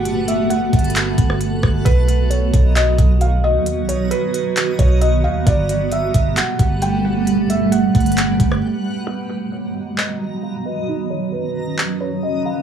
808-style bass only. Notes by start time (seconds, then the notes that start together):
Already playing: G1
0.73 G1
1.18 G1
1.63 G1
1.86 B1
2.54 B1
2.98 B1
3.55 D#2
3.83 B1
4.79 B1
5.24 D#2
5.47 G1
6.14 G1
6.59 G1
7.95 G1
8.40 G1